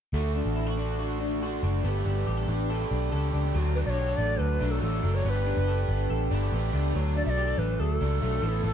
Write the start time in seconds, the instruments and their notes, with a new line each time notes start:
0.13 picked electric bass D2, overdriven electric guitar D3 A3 D4 F#4, clean electric guitar A3 F#4
0.35 clean electric guitar D4
0.45 picked electric bass A1
0.56 clean electric guitar E4
0.67 clean electric guitar F#4
0.77 overdriven electric guitar A3 D4 F#4, clean electric guitar D4
0.99 overdriven electric guitar D3 A3 D4 F#4, clean electric guitar F#4
1.20 clean electric guitar D4
1.42 overdriven electric guitar D3 A3 D4 F#4, clean electric guitar F#4
1.63 picked electric bass F#1, clean electric guitar D4
1.84 picked electric bass G1, overdriven electric guitar G3 A3 D4 G4 B4, clean electric guitar B3 A4
2.06 picked electric bass G1, clean electric guitar D4
2.27 picked electric bass A1, clean electric guitar G4
2.37 clean electric guitar A4
2.48 picked electric bass A1, clean electric guitar D4, overdriven electric guitar D4 G4 B4
2.70 overdriven electric guitar A3 D4 G4 B4, clean electric guitar A4
2.91 picked electric bass B1, clean electric guitar D4
3.12 picked electric bass C#2, overdriven electric guitar A3 D4 G4 B4, clean electric guitar A4
3.33 picked electric bass C#2, clean electric guitar D4
3.54 picked electric bass D2, overdriven electric guitar D3 F#3 A3 D4 F#4, clean electric guitar F#3
3.75 clean electric guitar D4, shakuhachi B4
3.85 picked electric bass B1, overdriven electric guitar A3 D4 F#4, shakuhachi D5
3.90 shakuhachi C#5
3.98 clean electric guitar G4
4.08 clean electric guitar A4
4.17 picked electric bass A1, clean electric guitar A3, shakuhachi D5
4.39 picked electric bass D2, clean electric guitar A4, shakuhachi B4
4.59 picked electric bass B1, overdriven electric guitar F#3 A3 D4 F#4, clean electric guitar D4
4.71 shakuhachi A4
4.81 picked electric bass A1, overdriven electric guitar F#3 A3 D4 F#4, clean electric guitar A3, shakuhachi A4
5.02 picked electric bass F#1, overdriven electric guitar F#3 A3 D4 F#4, clean electric guitar D4
5.15 shakuhachi C#5
5.24 picked electric bass G1, overdriven electric guitar G3 A3 D4 G4 B4, clean electric guitar B3, shakuhachi C#5
5.30 shakuhachi B4
5.46 clean electric guitar D4
5.56 picked electric bass F#1, overdriven electric guitar D4 G4 B4
5.68 clean electric guitar A4
5.89 picked electric bass G1, clean electric guitar B3
6.10 picked electric bass A1, clean electric guitar A4
6.31 picked electric bass G1, overdriven electric guitar A3 D4 G4 B4, clean electric guitar D4
6.52 picked electric bass A1, overdriven electric guitar A3 D4 G4 B4, clean electric guitar B3
6.73 picked electric bass C#2, overdriven electric guitar A3 D4 G4 B4, clean electric guitar D4
6.94 picked electric bass D2, overdriven electric guitar D3 F#3 A3 D4 A4, clean electric guitar F#3
7.16 clean electric guitar D4, shakuhachi D5
7.25 picked electric bass B1, overdriven electric guitar A3 D4 A4, shakuhachi E5
7.30 shakuhachi D5
7.37 clean electric guitar G4
7.47 clean electric guitar A4
7.58 picked electric bass A1, clean electric guitar A3, shakuhachi B4
7.79 picked electric bass D2, shakuhachi G#4, clean electric guitar A4
7.95 shakuhachi A4
8.00 picked electric bass C#2, overdriven electric guitar F#3 A3 D4 A4, clean electric guitar D4
8.21 picked electric bass B1, overdriven electric guitar F#3 A3 D4 A4, clean electric guitar A3
8.42 picked electric bass A1, clean electric guitar E3, overdriven electric guitar A3 B3 E4 A4
8.64 picked electric bass A1, clean electric guitar E3, overdriven electric guitar A3 B3 E4 A4, shakuhachi A4